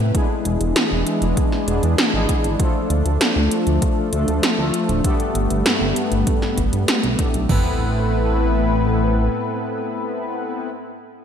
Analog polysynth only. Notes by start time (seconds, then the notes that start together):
Already playing: A2 B3 C4 E4 A4 B4
0.15 G#3 B3 D4 E4 G#4
1.68 G#3 B3 D4 E4 G#4
2.14 G#3 B3 D4 E4 G#4
2.60 F3 A3 D4 F4 A4
4.13 F3 A3 D4 F4 A4
4.59 F3 A3 D4 F4 A4
5.04 G2 A3 B3 D4 G4 A4
7.19 A2 A3 B3 D4 G4 A4
7.49 B3 C4 E4 A4 B4